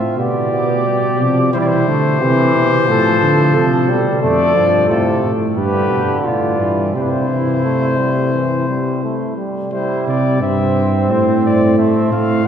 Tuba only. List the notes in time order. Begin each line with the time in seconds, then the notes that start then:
0.18 B2
1.20 C3
1.54 E3
1.88 D3
2.21 C3
2.54 B2
2.88 A2
3.22 D3
3.56 C3
3.89 B2
4.23 F2
4.56 G2
4.90 A2
5.23 A2
5.57 G2
5.91 B2
6.25 A2
6.60 G2
6.94 C3
10.07 C3
10.42 G2
11.10 A2
12.12 A2